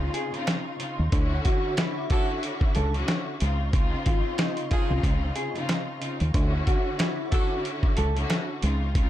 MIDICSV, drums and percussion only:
0, 0, Header, 1, 2, 480
1, 0, Start_track
1, 0, Tempo, 652174
1, 828, Time_signature, 4, 2, 24, 8
1, 6695, End_track
2, 0, Start_track
2, 0, Title_t, "Drums"
2, 103, Note_on_c, 9, 42, 89
2, 177, Note_off_c, 9, 42, 0
2, 249, Note_on_c, 9, 42, 49
2, 323, Note_off_c, 9, 42, 0
2, 346, Note_on_c, 9, 26, 80
2, 347, Note_on_c, 9, 42, 91
2, 350, Note_on_c, 9, 38, 118
2, 420, Note_off_c, 9, 26, 0
2, 420, Note_off_c, 9, 42, 0
2, 424, Note_off_c, 9, 38, 0
2, 587, Note_on_c, 9, 42, 84
2, 661, Note_off_c, 9, 42, 0
2, 826, Note_on_c, 9, 42, 85
2, 828, Note_on_c, 9, 36, 121
2, 900, Note_off_c, 9, 42, 0
2, 901, Note_off_c, 9, 36, 0
2, 1066, Note_on_c, 9, 42, 92
2, 1071, Note_on_c, 9, 36, 93
2, 1139, Note_off_c, 9, 42, 0
2, 1144, Note_off_c, 9, 36, 0
2, 1304, Note_on_c, 9, 42, 92
2, 1306, Note_on_c, 9, 26, 70
2, 1309, Note_on_c, 9, 38, 112
2, 1377, Note_off_c, 9, 42, 0
2, 1380, Note_off_c, 9, 26, 0
2, 1383, Note_off_c, 9, 38, 0
2, 1544, Note_on_c, 9, 42, 75
2, 1550, Note_on_c, 9, 36, 99
2, 1618, Note_off_c, 9, 42, 0
2, 1623, Note_off_c, 9, 36, 0
2, 1788, Note_on_c, 9, 42, 91
2, 1862, Note_off_c, 9, 42, 0
2, 1922, Note_on_c, 9, 36, 96
2, 1995, Note_off_c, 9, 36, 0
2, 2022, Note_on_c, 9, 42, 86
2, 2095, Note_off_c, 9, 42, 0
2, 2167, Note_on_c, 9, 42, 48
2, 2241, Note_off_c, 9, 42, 0
2, 2266, Note_on_c, 9, 42, 92
2, 2267, Note_on_c, 9, 26, 77
2, 2270, Note_on_c, 9, 38, 119
2, 2340, Note_off_c, 9, 42, 0
2, 2341, Note_off_c, 9, 26, 0
2, 2343, Note_off_c, 9, 38, 0
2, 2505, Note_on_c, 9, 42, 81
2, 2579, Note_off_c, 9, 42, 0
2, 2747, Note_on_c, 9, 42, 88
2, 2748, Note_on_c, 9, 36, 124
2, 2820, Note_off_c, 9, 42, 0
2, 2822, Note_off_c, 9, 36, 0
2, 2987, Note_on_c, 9, 42, 88
2, 2991, Note_on_c, 9, 36, 96
2, 3060, Note_off_c, 9, 42, 0
2, 3065, Note_off_c, 9, 36, 0
2, 3224, Note_on_c, 9, 42, 93
2, 3227, Note_on_c, 9, 26, 71
2, 3230, Note_on_c, 9, 38, 114
2, 3298, Note_off_c, 9, 42, 0
2, 3300, Note_off_c, 9, 26, 0
2, 3303, Note_off_c, 9, 38, 0
2, 3363, Note_on_c, 9, 42, 52
2, 3436, Note_off_c, 9, 42, 0
2, 3465, Note_on_c, 9, 42, 75
2, 3470, Note_on_c, 9, 36, 100
2, 3539, Note_off_c, 9, 42, 0
2, 3544, Note_off_c, 9, 36, 0
2, 3705, Note_on_c, 9, 36, 104
2, 3709, Note_on_c, 9, 42, 90
2, 3779, Note_off_c, 9, 36, 0
2, 3783, Note_off_c, 9, 42, 0
2, 3942, Note_on_c, 9, 42, 84
2, 4015, Note_off_c, 9, 42, 0
2, 4089, Note_on_c, 9, 42, 46
2, 4162, Note_off_c, 9, 42, 0
2, 4187, Note_on_c, 9, 26, 76
2, 4187, Note_on_c, 9, 42, 92
2, 4190, Note_on_c, 9, 38, 115
2, 4260, Note_off_c, 9, 26, 0
2, 4260, Note_off_c, 9, 42, 0
2, 4264, Note_off_c, 9, 38, 0
2, 4428, Note_on_c, 9, 42, 80
2, 4501, Note_off_c, 9, 42, 0
2, 4565, Note_on_c, 9, 42, 59
2, 4639, Note_off_c, 9, 42, 0
2, 4668, Note_on_c, 9, 42, 83
2, 4669, Note_on_c, 9, 36, 122
2, 4742, Note_off_c, 9, 36, 0
2, 4742, Note_off_c, 9, 42, 0
2, 4908, Note_on_c, 9, 42, 89
2, 4912, Note_on_c, 9, 36, 95
2, 4982, Note_off_c, 9, 42, 0
2, 4985, Note_off_c, 9, 36, 0
2, 5145, Note_on_c, 9, 42, 91
2, 5146, Note_on_c, 9, 26, 69
2, 5151, Note_on_c, 9, 38, 112
2, 5219, Note_off_c, 9, 42, 0
2, 5220, Note_off_c, 9, 26, 0
2, 5224, Note_off_c, 9, 38, 0
2, 5387, Note_on_c, 9, 42, 74
2, 5390, Note_on_c, 9, 36, 99
2, 5460, Note_off_c, 9, 42, 0
2, 5464, Note_off_c, 9, 36, 0
2, 5631, Note_on_c, 9, 42, 92
2, 5704, Note_off_c, 9, 42, 0
2, 5763, Note_on_c, 9, 36, 96
2, 5836, Note_off_c, 9, 36, 0
2, 5864, Note_on_c, 9, 42, 89
2, 5937, Note_off_c, 9, 42, 0
2, 6010, Note_on_c, 9, 42, 49
2, 6083, Note_off_c, 9, 42, 0
2, 6107, Note_on_c, 9, 26, 80
2, 6108, Note_on_c, 9, 42, 92
2, 6111, Note_on_c, 9, 38, 115
2, 6180, Note_off_c, 9, 26, 0
2, 6182, Note_off_c, 9, 42, 0
2, 6185, Note_off_c, 9, 38, 0
2, 6348, Note_on_c, 9, 42, 84
2, 6422, Note_off_c, 9, 42, 0
2, 6588, Note_on_c, 9, 42, 85
2, 6589, Note_on_c, 9, 36, 121
2, 6661, Note_off_c, 9, 42, 0
2, 6662, Note_off_c, 9, 36, 0
2, 6695, End_track
0, 0, End_of_file